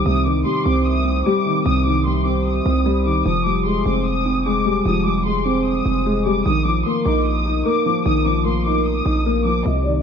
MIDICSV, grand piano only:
0, 0, Header, 1, 2, 480
1, 0, Start_track
1, 0, Tempo, 400000
1, 67, Time_signature, 4, 2, 24, 8
1, 12029, End_track
2, 0, Start_track
2, 0, Title_t, "Grand piano"
2, 0, Program_c, 0, 0
2, 0, Control_c, 0, 64, 127
2, 0, Note_on_c, 0, 48, 96
2, 0, Note_on_c, 0, 51, 79
2, 0, Note_on_c, 0, 55, 97
2, 0, Note_on_c, 0, 60, 84
2, 74, Note_off_c, 0, 48, 0
2, 74, Note_on_c, 0, 48, 92
2, 295, Note_off_c, 0, 51, 0
2, 313, Note_on_c, 0, 51, 84
2, 524, Note_off_c, 0, 55, 0
2, 542, Note_on_c, 0, 55, 77
2, 543, Note_off_c, 0, 60, 0
2, 790, Note_on_c, 0, 60, 92
2, 1242, Note_off_c, 0, 60, 0
2, 1260, Note_on_c, 0, 60, 88
2, 1271, Note_off_c, 0, 48, 0
2, 1495, Note_off_c, 0, 55, 0
2, 1510, Note_off_c, 0, 51, 0
2, 1513, Note_on_c, 0, 55, 101
2, 1751, Note_on_c, 0, 51, 82
2, 1989, Note_on_c, 0, 48, 86
2, 2218, Note_off_c, 0, 51, 0
2, 2236, Note_on_c, 0, 51, 81
2, 2452, Note_off_c, 0, 55, 0
2, 2464, Note_off_c, 0, 60, 0
2, 2470, Note_on_c, 0, 55, 76
2, 2704, Note_on_c, 0, 60, 95
2, 3173, Note_off_c, 0, 60, 0
2, 3188, Note_off_c, 0, 48, 0
2, 3191, Note_on_c, 0, 60, 89
2, 3410, Note_off_c, 0, 55, 0
2, 3428, Note_on_c, 0, 55, 100
2, 3432, Note_off_c, 0, 51, 0
2, 3663, Note_on_c, 0, 51, 73
2, 3905, Note_off_c, 0, 51, 0
2, 3908, Note_off_c, 0, 55, 0
2, 3909, Note_on_c, 0, 53, 86
2, 3910, Note_off_c, 0, 60, 0
2, 3922, Control_c, 0, 64, 0
2, 4152, Note_on_c, 0, 55, 72
2, 4158, Control_c, 0, 64, 127
2, 4389, Note_on_c, 0, 56, 80
2, 4635, Note_on_c, 0, 60, 90
2, 5086, Note_off_c, 0, 60, 0
2, 5104, Note_on_c, 0, 60, 86
2, 5109, Note_off_c, 0, 53, 0
2, 5335, Note_off_c, 0, 56, 0
2, 5350, Note_off_c, 0, 55, 0
2, 5353, Note_on_c, 0, 56, 97
2, 5584, Note_on_c, 0, 55, 78
2, 5829, Note_on_c, 0, 53, 88
2, 6045, Note_off_c, 0, 55, 0
2, 6063, Note_on_c, 0, 55, 76
2, 6294, Note_off_c, 0, 56, 0
2, 6306, Note_off_c, 0, 60, 0
2, 6312, Note_on_c, 0, 56, 78
2, 6543, Note_on_c, 0, 60, 95
2, 7011, Note_off_c, 0, 60, 0
2, 7028, Note_off_c, 0, 53, 0
2, 7029, Note_on_c, 0, 60, 84
2, 7253, Note_off_c, 0, 56, 0
2, 7266, Note_off_c, 0, 55, 0
2, 7271, Note_on_c, 0, 56, 95
2, 7504, Note_on_c, 0, 55, 86
2, 7746, Note_off_c, 0, 55, 0
2, 7748, Note_off_c, 0, 60, 0
2, 7748, Note_on_c, 0, 51, 89
2, 7750, Note_off_c, 0, 56, 0
2, 7763, Control_c, 0, 64, 0
2, 7954, Control_c, 0, 64, 127
2, 7981, Note_on_c, 0, 53, 71
2, 8233, Note_on_c, 0, 58, 87
2, 8476, Note_on_c, 0, 63, 97
2, 8930, Note_off_c, 0, 63, 0
2, 8948, Note_off_c, 0, 51, 0
2, 8948, Note_on_c, 0, 63, 85
2, 9167, Note_off_c, 0, 58, 0
2, 9184, Note_off_c, 0, 53, 0
2, 9185, Note_on_c, 0, 58, 97
2, 9429, Note_on_c, 0, 53, 77
2, 9668, Note_on_c, 0, 51, 88
2, 9893, Note_off_c, 0, 53, 0
2, 9911, Note_on_c, 0, 53, 80
2, 10124, Note_off_c, 0, 58, 0
2, 10142, Note_on_c, 0, 58, 81
2, 10148, Note_off_c, 0, 63, 0
2, 10393, Note_on_c, 0, 63, 92
2, 10843, Note_off_c, 0, 63, 0
2, 10861, Note_on_c, 0, 63, 88
2, 10868, Note_off_c, 0, 51, 0
2, 11095, Note_off_c, 0, 58, 0
2, 11109, Note_off_c, 0, 53, 0
2, 11113, Note_on_c, 0, 58, 94
2, 11341, Note_on_c, 0, 53, 74
2, 11584, Note_off_c, 0, 53, 0
2, 11585, Note_off_c, 0, 63, 0
2, 11589, Note_on_c, 0, 48, 87
2, 11590, Note_off_c, 0, 58, 0
2, 11604, Control_c, 0, 64, 0
2, 11823, Control_c, 0, 64, 127
2, 11827, Note_on_c, 0, 51, 75
2, 12029, Note_off_c, 0, 48, 0
2, 12029, Note_off_c, 0, 51, 0
2, 12029, End_track
0, 0, End_of_file